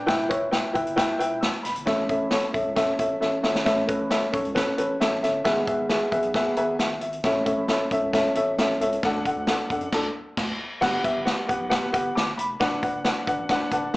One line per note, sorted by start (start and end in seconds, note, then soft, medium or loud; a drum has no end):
0.06 0.27 E1 loud
0.06 0.71 E3 medium
0.06 0.25 E4 loud
0.06 0.25 B4 loud
0.06 0.25 G5 loud
0.06 kick medium
0.06 snare medium
0.06 closed hi-hat medium
0.29 0.47 E4 medium
0.29 0.47 B4 medium
0.29 0.47 C#5 medium
0.29 kick medium
0.29 closed hi-hat medium
0.42 0.60 E1 loud
0.51 0.69 E4 medium
0.51 0.70 B4 medium
0.51 0.70 G5 medium
0.51 snare medium
0.51 closed hi-hat medium
0.73 0.85 F#1 medium
0.73 0.92 E4 medium
0.73 0.92 B4 medium
0.73 0.92 G5 medium
0.73 kick medium
0.73 closed hi-hat medium
0.87 0.96 G1 medium
0.87 closed hi-hat soft
0.96 1.14 E4 loud
0.96 1.14 B4 loud
0.96 1.15 G5 loud
0.96 kick medium
0.96 snare loud
0.96 closed hi-hat medium
1.10 1.15 E1 soft
1.19 1.48 E1 medium
1.19 1.37 E4 loud
1.19 1.37 B4 medium
1.19 1.37 G5 loud
1.19 closed hi-hat medium
1.41 1.63 E6 medium
1.41 snare loud
1.41 closed hi-hat medium
1.63 1.75 E1 medium
1.63 2.07 B5 medium
1.63 snare soft
1.63 closed hi-hat medium
1.76 1.89 G1 medium
1.76 closed hi-hat medium
1.86 2.06 A1 loud
1.86 2.50 A2 medium
1.86 2.04 C#4 loud
1.86 2.04 A4 loud
1.86 2.05 E5 loud
1.86 kick medium
1.86 snare loud
1.86 closed hi-hat medium
2.09 2.27 C#4 medium
2.09 2.27 A4 medium
2.09 2.27 E5 medium
2.09 kick medium
2.09 closed hi-hat medium
2.22 2.40 A1 medium
2.31 2.49 C#4 medium
2.31 2.50 A4 medium
2.31 2.50 C#5 medium
2.31 snare loud
2.31 closed hi-hat medium
2.53 2.64 B1 loud
2.53 2.71 C#4 medium
2.53 2.72 A4 medium
2.53 2.72 E5 medium
2.53 kick medium
2.53 closed hi-hat medium
2.66 2.75 C#2 medium
2.75 2.94 C#4 loud
2.75 2.94 A4 loud
2.75 2.94 E5 loud
2.75 kick medium
2.75 snare loud
2.75 closed hi-hat medium
2.91 2.94 A1 soft
2.99 3.18 A1 medium
2.99 3.17 C#4 medium
2.99 3.17 A4 medium
2.99 3.17 E5 medium
2.99 kick medium
2.99 closed hi-hat medium
3.20 3.41 A1 medium
3.20 3.39 C#4 medium
3.20 3.39 A4 medium
3.20 3.39 E5 medium
3.20 snare soft
3.43 3.63 G#1 medium
3.43 3.61 C#4 medium
3.43 3.61 A4 medium
3.43 3.61 E5 medium
3.43 snare medium
3.55 snare medium
3.65 3.85 A1 loud
3.65 4.29 A2 medium
3.65 3.83 C#4 loud
3.65 3.83 A4 loud
3.65 3.84 E5 loud
3.65 kick medium
3.65 snare loud
3.65 closed hi-hat medium
3.87 4.06 C#4 medium
3.87 4.06 A4 medium
3.87 4.06 B4 medium
3.87 kick medium
3.87 closed hi-hat medium
4.01 4.19 A1 medium
4.10 4.28 C#4 medium
4.10 4.28 A4 medium
4.10 4.29 E5 medium
4.10 snare loud
4.10 closed hi-hat medium
4.32 4.43 B1 medium
4.32 4.50 C#4 medium
4.32 4.51 A4 medium
4.32 4.51 C#5 medium
4.32 kick medium
4.32 closed hi-hat medium
4.45 4.55 C#2 medium
4.45 closed hi-hat soft
4.55 4.73 C#4 loud
4.55 4.73 A4 medium
4.55 4.73 B4 loud
4.55 kick medium
4.55 snare loud
4.55 closed hi-hat loud
4.68 4.73 A1 soft
4.77 4.97 A1 medium
4.77 4.95 C#4 medium
4.77 4.96 A4 medium
4.77 4.96 B4 loud
4.77 closed hi-hat medium
5.00 5.20 A1 loud
5.00 5.18 C#4 medium
5.00 5.18 A4 medium
5.00 5.18 E5 medium
5.00 snare loud
5.00 closed hi-hat medium
5.23 5.42 G1 medium
5.23 5.41 C#4 medium
5.23 5.41 A4 medium
5.23 5.41 E5 loud
5.23 snare soft
5.23 closed hi-hat medium
5.44 5.64 G#1 loud
5.44 6.08 G#2 medium
5.44 5.63 B3 loud
5.44 5.63 G#4 loud
5.44 5.63 E5 loud
5.44 kick medium
5.44 snare loud
5.44 closed hi-hat medium
5.67 5.85 B3 medium
5.67 5.85 G#4 medium
5.67 5.85 E5 medium
5.67 kick loud
5.67 closed hi-hat medium
5.80 5.98 G#1 medium
5.89 6.08 B3 medium
5.89 6.07 G#4 medium
5.89 6.08 E5 medium
5.89 snare loud
5.89 closed hi-hat medium
6.11 6.22 A1 loud
6.11 6.29 B3 medium
6.11 6.30 G#4 medium
6.11 6.30 E5 loud
6.11 kick medium
6.11 closed hi-hat medium
6.23 6.33 B1 medium
6.23 closed hi-hat soft
6.34 6.52 B3 loud
6.34 6.53 G#4 loud
6.34 6.53 E5 loud
6.34 kick medium
6.34 snare loud
6.34 closed hi-hat medium
6.48 6.52 G#1 soft
6.56 6.76 G#1 medium
6.56 6.75 B3 medium
6.56 6.75 G#4 medium
6.56 6.75 E5 loud
6.56 6.78 G#5 medium
6.56 closed hi-hat medium
6.79 6.99 G#1 medium
6.79 7.00 E5 medium
6.79 7.01 F#5 medium
6.79 snare loud
6.79 closed hi-hat medium
7.01 7.20 G#1 loud
7.01 7.23 E5 medium
7.01 closed hi-hat medium
7.13 closed hi-hat soft
7.24 7.43 A1 loud
7.24 7.88 A2 medium
7.24 7.42 C#4 loud
7.24 7.42 A4 loud
7.24 7.42 E5 loud
7.24 kick loud
7.24 snare loud
7.24 closed hi-hat medium
7.45 7.64 C#4 medium
7.45 7.64 A4 medium
7.45 7.64 E5 loud
7.45 kick medium
7.45 closed hi-hat medium
7.58 7.76 A1 medium
7.68 7.86 C#4 medium
7.68 7.86 A4 medium
7.68 7.87 E5 medium
7.68 snare loud
7.68 closed hi-hat medium
7.91 8.01 B1 medium
7.91 8.09 C#4 medium
7.91 8.09 A4 medium
7.91 8.09 E5 loud
7.91 kick medium
7.91 closed hi-hat medium
8.02 8.30 C#2 medium
8.13 8.31 C#4 loud
8.13 8.31 A4 loud
8.13 8.31 E5 loud
8.13 kick medium
8.13 snare loud
8.13 closed hi-hat loud
8.35 8.54 A1 medium
8.35 8.54 C#4 medium
8.35 8.54 A4 medium
8.35 8.54 E5 loud
8.35 closed hi-hat medium
8.58 8.76 A1 medium
8.58 8.76 C#4 medium
8.58 8.76 A4 medium
8.58 8.77 E5 medium
8.58 snare loud
8.58 closed hi-hat medium
8.80 8.99 C#2 loud
8.80 8.99 C#4 medium
8.80 8.98 A4 medium
8.80 8.99 E5 medium
8.80 closed hi-hat medium
8.93 closed hi-hat medium
9.03 9.22 D2 loud
9.03 9.67 D3 medium
9.03 9.21 D4 loud
9.03 9.21 A4 loud
9.03 9.22 F#5 loud
9.03 kick loud
9.03 snare loud
9.03 closed hi-hat medium
9.25 9.44 D4 medium
9.25 9.44 A4 medium
9.25 9.44 F#5 medium
9.25 kick medium
9.25 closed hi-hat medium
9.36 9.55 D2 medium
9.47 9.66 D4 medium
9.47 9.66 A4 medium
9.47 9.66 F#5 medium
9.47 snare loud
9.47 closed hi-hat medium
9.70 9.79 E2 loud
9.70 9.88 D4 medium
9.70 9.88 A4 medium
9.70 9.88 F#5 medium
9.70 kick medium
9.70 closed hi-hat medium
9.81 9.90 F#2 medium
9.81 closed hi-hat soft
9.92 10.08 D2 loud
9.92 10.08 D4 medium
9.92 10.08 A4 loud
9.92 10.09 A5 medium
9.92 kick loud
9.92 snare medium
9.92 crash medium
10.37 10.53 D2 loud
10.37 kick loud
10.37 snare loud
10.37 crash medium
10.81 11.01 G1 loud
10.81 11.44 G2 medium
10.81 10.99 B3 loud
10.81 10.99 G4 medium
10.81 10.99 F#5 loud
10.81 kick medium
10.81 snare loud
10.81 crash medium
11.03 11.21 B3 medium
11.03 11.22 G4 medium
11.03 11.22 E5 loud
11.03 kick medium
11.03 closed hi-hat medium
11.16 11.34 G1 medium
11.25 11.43 B3 medium
11.25 11.43 G4 medium
11.25 11.44 F#5 medium
11.25 snare loud
11.25 closed hi-hat medium
11.48 11.59 A1 loud
11.48 11.66 B3 medium
11.48 11.66 G4 medium
11.48 11.66 F#5 medium
11.48 kick medium
11.48 closed hi-hat medium
11.61 11.70 B1 medium
11.69 11.88 B3 loud
11.69 11.88 G4 medium
11.69 11.88 F#5 loud
11.69 kick medium
11.69 snare loud
11.69 closed hi-hat medium
11.83 11.87 G1 soft
11.92 12.12 G1 medium
11.92 12.11 B3 medium
11.92 12.11 G4 medium
11.92 12.11 F#5 medium
11.92 kick medium
11.92 closed hi-hat medium
12.15 12.34 G1 loud
12.15 12.37 D6 medium
12.15 snare loud
12.15 closed hi-hat medium
12.38 12.57 F1 medium
12.38 12.80 B5 medium
12.38 closed hi-hat medium
12.60 12.79 F#1 loud
12.60 12.78 D4 loud
12.60 12.78 B4 loud
12.60 12.78 F#5 loud
12.60 kick loud
12.60 snare loud
12.60 closed hi-hat medium
12.82 13.00 D4 medium
12.82 13.00 B4 medium
12.82 13.00 F#5 medium
12.82 kick medium
12.82 closed hi-hat medium
12.95 13.13 F#1 loud
13.04 13.22 D4 medium
13.04 13.23 B4 medium
13.04 13.23 F#5 medium
13.04 snare loud
13.04 closed hi-hat medium
13.27 13.37 G1 loud
13.27 13.45 D4 medium
13.27 13.45 B4 medium
13.27 13.45 F#5 medium
13.27 kick medium
13.27 closed hi-hat medium
13.39 13.48 A1 medium
13.49 13.67 D4 loud
13.49 13.68 B4 loud
13.49 13.68 F#5 loud
13.49 kick medium
13.49 snare loud
13.49 closed hi-hat medium
13.62 13.66 F#1 soft
13.71 13.90 F#1 loud
13.71 13.90 D4 medium
13.71 13.90 B4 medium
13.71 13.90 F#5 medium
13.71 13.93 A5 medium
13.71 kick medium
13.71 closed hi-hat medium